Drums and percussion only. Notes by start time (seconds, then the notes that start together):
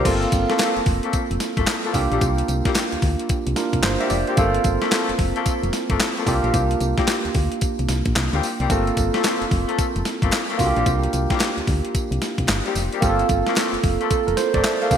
0.05 kick, closed hi-hat, crash, tambourine
0.23 closed hi-hat
0.32 kick, closed hi-hat, tambourine
0.50 snare, closed hi-hat
0.59 snare, clap, closed hi-hat, tambourine
0.77 closed hi-hat
0.86 kick, open hi-hat
1.03 closed hi-hat
1.13 kick, closed hi-hat, tambourine
1.31 closed hi-hat
1.40 snare, closed hi-hat, tambourine
1.57 kick, closed hi-hat
1.67 snare, clap, closed hi-hat, tambourine
1.84 closed hi-hat
1.94 kick, open hi-hat, tambourine
2.12 closed hi-hat
2.21 kick, closed hi-hat, tambourine
2.38 closed hi-hat
2.48 closed hi-hat, tambourine
2.65 kick, snare, closed hi-hat
2.75 snare, clap, closed hi-hat, tambourine
2.92 closed hi-hat
3.02 kick, open hi-hat
3.19 closed hi-hat
3.29 kick, closed hi-hat, tambourine
3.47 closed hi-hat
3.56 snare, closed hi-hat, tambourine
3.73 kick, closed hi-hat
3.83 snare, clap, closed hi-hat, tambourine
4.01 closed hi-hat
4.10 open hi-hat, tambourine
4.27 closed hi-hat
4.37 kick, closed hi-hat, tambourine
4.54 closed hi-hat
4.64 kick, closed hi-hat, tambourine
4.82 snare, closed hi-hat
4.92 snare, clap, closed hi-hat, tambourine
5.09 closed hi-hat
5.19 kick, open hi-hat
5.36 closed hi-hat
5.46 kick, closed hi-hat, tambourine
5.63 closed hi-hat
5.73 snare, closed hi-hat, tambourine
5.90 kick, closed hi-hat
6.00 snare, clap, closed hi-hat, tambourine
6.17 closed hi-hat
6.27 kick, open hi-hat, tambourine
6.44 closed hi-hat
6.54 kick, closed hi-hat, tambourine
6.71 closed hi-hat
6.80 closed hi-hat, tambourine
6.98 kick, snare, closed hi-hat
7.07 snare, clap, closed hi-hat, tambourine
7.25 closed hi-hat
7.34 kick, open hi-hat
7.52 closed hi-hat
7.61 kick, closed hi-hat, tambourine
7.79 closed hi-hat
7.88 snare, closed hi-hat, tambourine
8.06 kick, closed hi-hat
8.16 snare, clap, closed hi-hat, tambourine
8.33 closed hi-hat
8.43 open hi-hat, tambourine
8.60 closed hi-hat
8.70 kick, closed hi-hat, tambourine
8.87 closed hi-hat
8.97 kick, closed hi-hat, tambourine
9.14 snare, closed hi-hat
9.24 snare, clap, closed hi-hat, tambourine
9.42 closed hi-hat
9.51 kick, open hi-hat
9.69 closed hi-hat
9.79 kick, closed hi-hat, tambourine
9.96 closed hi-hat
10.05 snare, closed hi-hat, tambourine
10.22 kick, closed hi-hat
10.32 snare, clap, closed hi-hat, tambourine
10.50 closed hi-hat
10.59 kick, open hi-hat, tambourine
10.77 closed hi-hat
10.86 kick, closed hi-hat, tambourine
11.04 closed hi-hat
11.13 closed hi-hat, tambourine
11.30 kick, snare, closed hi-hat
11.40 snare, clap, closed hi-hat, tambourine
11.58 closed hi-hat
11.67 kick, open hi-hat
11.85 closed hi-hat
11.95 kick, closed hi-hat, tambourine
12.12 closed hi-hat
12.22 snare, closed hi-hat, tambourine
12.38 kick, closed hi-hat
12.48 snare, clap, closed hi-hat, tambourine
12.66 closed hi-hat
12.76 open hi-hat, tambourine
12.92 closed hi-hat
13.02 kick, closed hi-hat, tambourine
13.19 closed hi-hat
13.29 kick, closed hi-hat, tambourine
13.47 snare, closed hi-hat
13.56 snare, clap, closed hi-hat, tambourine
13.74 closed hi-hat
13.84 kick, open hi-hat
14.01 closed hi-hat
14.11 kick, closed hi-hat, tambourine
14.28 closed hi-hat
14.37 snare, closed hi-hat, tambourine
14.54 kick, closed hi-hat
14.64 snare, clap, closed hi-hat, tambourine
14.82 closed hi-hat
14.91 kick, open hi-hat, tambourine